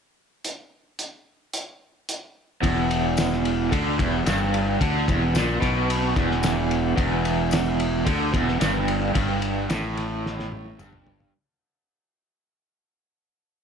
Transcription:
0.45 closed hi-hat
0.99 closed hi-hat
1.53 closed hi-hat
2.09 closed hi-hat
2.62 E1 E2, kick, ride
2.91 ride
3.17 snare, ride, tambourine
3.33 snare
3.45 ride
3.71 D2 D3, kick, ride
3.98 E1 E2, kick, ride
4.26 G1 G2, snare, ride, tambourine
4.54 ride
4.80 D2 D3, kick, ride
5.08 E1 E2, kick, ride
5.34 A#1 A#2, snare, ride, tambourine
5.61 B1 B2, kick, snare, ride
5.90 ride
6.15 E1 E2, kick, snare, ride
6.31 snare
6.43 snare, ride, tambourine
6.71 ride
6.96 E1 E2, kick, ride
7.25 ride
7.51 snare, ride, tambourine
7.80 ride
8.05 D2 D3, kick, ride
8.33 E1 E2, kick, snare, ride
8.48 snare
8.60 G1 G2, snare, ride, tambourine
8.88 ride
9.14 G1 G2, kick, ride
9.42 ride
9.69 A1 A2, snare, ride, tambourine
9.97 snare, ride
10.26 snare
10.40 snare
10.52 high tom
10.66 high tom
10.78 G1 G2, mid tom, tambourine
10.93 mid tom
11.07 floor tom
11.20 floor tom

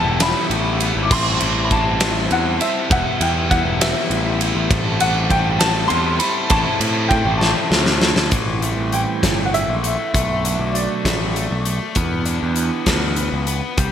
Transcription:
Already playing: E3 G3 B3 E4 E5 A5
0.05 E1
0.20 G3 B3 E4 B5, snare, ride
0.50 A1 F#4, ride
0.80 B3 E4, ride
0.95 G#1
1.03 D6
1.11 A1 A2 E3 G3 C4 E4 C5 A5 C6, kick, crash
1.41 A1 E3 E4, ride
1.46 C4
1.64 B5
1.71 E3 G3 C4 E4 A5, kick, ride
2.00 E3 C4 E4, snare, ride
2.31 E2 E4 F#5, ride
2.60 C4 E4 E5, ride
2.89 E1 E3 G3 B3 E4 E5 F#5, kick, ride
3.19 E2 E3 B3 E4 G5, ride
3.49 G3 B3 E4 F#5, kick, ride
3.65 E1
3.80 G3 B3 E4 E5, snare, ride
4.10 A1 F#4, ride
4.40 B3 E4, ride
4.55 A1
4.71 A1 A2 C4 E4 A4 C5 A5, kick, ride
5.00 A1 E3 E4 A4 F#5, ride
5.29 C4 E4 A4 G5, kick, ride
5.59 C4 E4 A4 A5, snare, ride
5.88 E2 E4 C6, ride
6.19 C4 E4 A4 B5, ride
6.49 A1 C4 E4 A4 A5, kick, ride
6.80 A2 E4 A4, ride
7.08 C4 E4 G5, kick, ride
7.14 A4
7.25 A1
7.38 A4 A5, snare
7.42 C4 E4
7.71 D2, snare
7.86 snare
8.01 E4 A4, snare
8.16 D2, snare
8.31 A1 E3 G3 C4, kick, closed hi-hat
8.62 A3, closed hi-hat
8.77 A1
8.92 E3 G5, closed hi-hat
9.22 G1 A3, kick, snare, closed hi-hat
9.45 F#5
9.53 E3 E5, closed hi-hat
9.68 A#1
9.83 A3, closed hi-hat
10.14 B1 B2 F#3 A3 F#4, kick, closed hi-hat
10.44 D4, closed hi-hat
10.59 B1
10.73 A3 D5, closed hi-hat
11.05 A1 A3, kick, snare, closed hi-hat
11.35 A3, closed hi-hat
11.51 B1
11.65 A3, closed hi-hat
11.95 E2 E3 B3 G4, kick, closed hi-hat
12.25 D4, closed hi-hat
12.43 E2
12.56 B3, closed hi-hat
12.86 D2 B3, kick, snare, closed hi-hat
13.16 B3, closed hi-hat
13.32 C#2
13.47 B3, closed hi-hat
13.77 C2 C3 G3 C4, kick, closed hi-hat

